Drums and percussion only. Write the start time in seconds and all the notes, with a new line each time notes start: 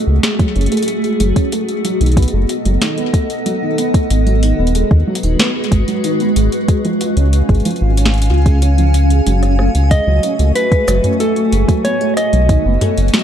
0.23 snare, closed hi-hat
0.39 kick, closed hi-hat
0.56 closed hi-hat
0.61 closed hi-hat
0.66 closed hi-hat
0.72 closed hi-hat
0.77 closed hi-hat
0.83 closed hi-hat
0.88 closed hi-hat
1.04 closed hi-hat
1.20 closed hi-hat
1.36 kick, closed hi-hat
1.52 closed hi-hat
1.69 closed hi-hat
1.85 closed hi-hat
2.01 closed hi-hat
2.06 closed hi-hat
2.12 closed hi-hat
2.17 kick, closed hi-hat
2.22 closed hi-hat
2.28 closed hi-hat
2.49 closed hi-hat
2.65 closed hi-hat
2.82 snare, closed hi-hat
2.98 closed hi-hat
3.14 kick, closed hi-hat
3.30 closed hi-hat
3.46 closed hi-hat
3.78 closed hi-hat
3.94 kick, closed hi-hat
4.10 closed hi-hat
4.27 closed hi-hat
4.43 closed hi-hat
4.67 closed hi-hat
4.75 closed hi-hat
4.91 kick
5.15 closed hi-hat
5.23 closed hi-hat
5.39 snare, closed hi-hat
5.64 closed hi-hat
5.72 kick, closed hi-hat
5.88 closed hi-hat
6.04 closed hi-hat
6.20 closed hi-hat
6.36 closed hi-hat
6.52 closed hi-hat
6.68 kick, closed hi-hat
6.85 closed hi-hat
7.01 closed hi-hat
7.17 closed hi-hat
7.33 closed hi-hat
7.49 kick, closed hi-hat
7.55 closed hi-hat
7.60 closed hi-hat
7.65 closed hi-hat
7.71 closed hi-hat
7.76 closed hi-hat
7.97 closed hi-hat
8.05 snare
8.14 closed hi-hat
8.18 closed hi-hat
8.22 closed hi-hat
8.34 closed hi-hat
8.38 closed hi-hat
8.42 closed hi-hat
8.46 kick, closed hi-hat
8.62 closed hi-hat
8.78 closed hi-hat
8.94 closed hi-hat
9.10 closed hi-hat
9.27 closed hi-hat
9.43 cross-stick, closed hi-hat
9.59 cross-stick
9.75 closed hi-hat
9.91 kick, closed hi-hat
10.23 closed hi-hat
10.39 closed hi-hat
10.55 closed hi-hat
10.72 kick, closed hi-hat
10.88 cross-stick, closed hi-hat, cabasa
11.04 closed hi-hat, mid tom
11.20 closed hi-hat
11.36 closed hi-hat
11.52 closed hi-hat
11.68 kick, closed hi-hat
11.85 closed hi-hat
12.01 closed hi-hat
12.17 cross-stick, closed hi-hat
12.33 closed hi-hat
12.49 kick, closed hi-hat
12.81 closed hi-hat, mid tom
12.98 closed hi-hat
13.08 closed hi-hat
13.14 snare, closed hi-hat
13.19 closed hi-hat